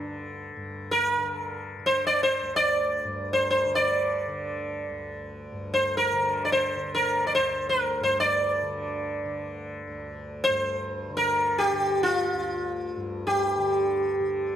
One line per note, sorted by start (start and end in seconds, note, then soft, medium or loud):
0.00 2.41 D2 soft
0.00 0.56 G2 medium
0.00 1.18 D3 medium
0.00 0.17 D4 medium
0.56 3.04 G2 soft
0.91 1.86 A#4 medium
1.18 1.79 D3 soft
1.79 3.65 D3 soft
1.86 2.06 C5 medium
2.07 2.23 D5 medium
2.23 2.56 C5 medium
2.42 4.89 D2 soft
2.56 3.33 D5 medium
3.04 5.51 G2 medium
3.33 3.49 C5 medium
3.51 3.75 C5 medium
3.65 4.28 D3 medium
3.75 4.97 D5 medium
4.28 6.13 D3 medium
4.90 7.38 D2 medium
5.52 8.00 G2 medium
5.74 5.97 C5 medium
5.97 6.44 A#4 medium
6.13 6.77 D3 medium
6.45 6.52 D5 soft
6.52 6.94 C5 medium
6.77 8.63 D3 medium
6.95 7.25 A#4 medium
7.27 7.34 D5 medium
7.35 7.69 C5 medium
7.39 9.87 D2 medium
7.69 8.03 A#4 medium
8.00 10.48 G2 medium
8.00 8.17 C5 medium
8.20 9.55 D5 medium
8.63 9.25 D3 medium
9.25 11.10 D3 medium
9.87 12.33 D2 medium
10.44 11.16 C5 medium
10.48 12.96 G2 medium
11.10 11.73 D3 medium
11.17 11.59 A#4 medium
11.58 12.03 G4 medium
11.73 13.58 D3 medium
12.03 13.26 F4 medium
12.34 14.56 D2 medium
12.96 14.56 G2 medium
13.27 14.56 G4 medium
13.58 14.20 D3 soft
14.20 14.56 D3 medium